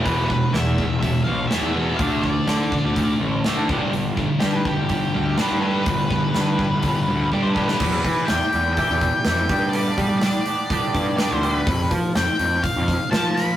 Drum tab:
CC |----------------|----------------|----------------|----------------|
HH |o---o---o---o---|o---o---o---o---|o---o---o---o---|o---o---o-------|
SD |----o-------o---|----o-------o---|----o-------o---|----o----------o|
BD |o-o---o-o-------|o-o---o-o-----o-|--o---o-o-------|o-o---o-o---o-o-|

CC |x---------------|----------------|----------------|
HH |--o-o-o-o-o-o-o-|o-o-o-o-o-o-o-o-|o-o-o-o-o-o-o-o-|
SD |----o-------o---|----o-------o---|----o-------o-o-|
BD |o-o-----o-o---o-|--o-----o-o-----|o-o-----o-o-----|